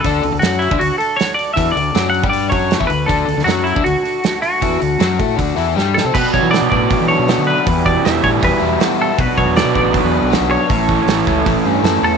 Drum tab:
CC |----------------|----------------|----------------|----------------|
HH |o-o-o-o-o-o-o-o-|o-o-o-o-o-o-o-o-|o-o-o-o-o-o-o-o-|o-o-o-o-o-o-----|
SD |----o-------o---|----o-------o---|---oo-------o---|----o-------o-o-|
BD |o------o--------|o------o--o--o--|o------o--------|o-----o-o-------|

CC |x---------------|----------------|----------------|----------------|
HH |----o---o---o---|o---o---o---o---|o---o---o---o---|o---o---o---o---|
SD |----o-------o---|----o-------o---|----o-------o---|----o-------o---|
BD |o-o---o-o-------|o-o---o-o-------|o-o---o-o-------|o-o---o-o-------|